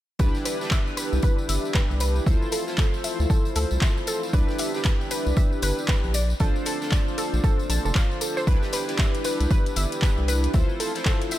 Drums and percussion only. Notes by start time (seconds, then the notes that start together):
0.19 kick, closed hi-hat, tambourine
0.35 snare, tambourine
0.45 closed hi-hat, open hi-hat, tambourine
0.61 snare, tambourine
0.71 kick, snare, clap, closed hi-hat, tambourine
0.87 tambourine
0.97 closed hi-hat, open hi-hat, tambourine
1.13 tambourine
1.22 kick, closed hi-hat, tambourine
1.38 tambourine
1.49 closed hi-hat, open hi-hat, tambourine
1.65 tambourine
1.74 kick, snare, clap, closed hi-hat, tambourine
1.91 tambourine
2.00 closed hi-hat, open hi-hat, tambourine
2.16 tambourine
2.27 kick, closed hi-hat, tambourine
2.42 tambourine
2.52 closed hi-hat, open hi-hat, tambourine
2.68 snare, tambourine
2.78 kick, snare, clap, closed hi-hat, tambourine
2.94 tambourine
3.04 closed hi-hat, open hi-hat, tambourine
3.20 tambourine
3.30 kick, closed hi-hat, tambourine
3.45 closed hi-hat, tambourine
3.55 closed hi-hat, open hi-hat, tambourine
3.71 tambourine
3.81 kick, snare, clap, closed hi-hat, tambourine
3.97 tambourine
4.07 closed hi-hat, open hi-hat, tambourine
4.23 snare, tambourine
4.33 kick, closed hi-hat, tambourine
4.48 snare, tambourine
4.58 closed hi-hat, open hi-hat, tambourine
4.74 snare, tambourine
4.85 kick, snare, clap, closed hi-hat, tambourine
5.01 tambourine
5.11 closed hi-hat, open hi-hat, tambourine
5.26 tambourine
5.37 kick, closed hi-hat, tambourine
5.53 tambourine
5.62 closed hi-hat, open hi-hat, tambourine
5.79 tambourine
5.88 kick, snare, clap, closed hi-hat, tambourine
6.04 tambourine
6.14 closed hi-hat, open hi-hat, tambourine
6.30 tambourine
6.40 kick, closed hi-hat, tambourine
6.56 tambourine
6.66 closed hi-hat, open hi-hat, tambourine
6.82 snare, tambourine
6.91 kick, snare, clap, closed hi-hat, tambourine
7.08 tambourine
7.18 closed hi-hat, open hi-hat, tambourine
7.34 tambourine
7.44 kick, closed hi-hat, tambourine
7.59 closed hi-hat, tambourine
7.70 closed hi-hat, open hi-hat, tambourine
7.85 tambourine
7.95 kick, snare, clap, closed hi-hat, tambourine
8.11 tambourine
8.21 closed hi-hat, open hi-hat, tambourine
8.37 snare, tambourine
8.47 kick, closed hi-hat, tambourine
8.63 snare, tambourine
8.73 closed hi-hat, open hi-hat, tambourine
8.88 snare, closed hi-hat, tambourine
8.98 kick, snare, clap, closed hi-hat, tambourine
9.15 closed hi-hat, tambourine
9.24 closed hi-hat, open hi-hat, tambourine
9.40 closed hi-hat, tambourine
9.51 kick, closed hi-hat, tambourine
9.66 closed hi-hat, tambourine
9.76 closed hi-hat, open hi-hat, tambourine
9.92 closed hi-hat, tambourine
10.02 kick, snare, clap, closed hi-hat, tambourine
10.18 tambourine
10.28 closed hi-hat, open hi-hat, tambourine
10.44 closed hi-hat, tambourine
10.54 kick, closed hi-hat, tambourine
10.69 tambourine
10.80 closed hi-hat, open hi-hat, tambourine
10.95 snare, closed hi-hat, tambourine
11.05 kick, snare, clap, closed hi-hat, tambourine
11.21 closed hi-hat, tambourine
11.31 closed hi-hat, open hi-hat, tambourine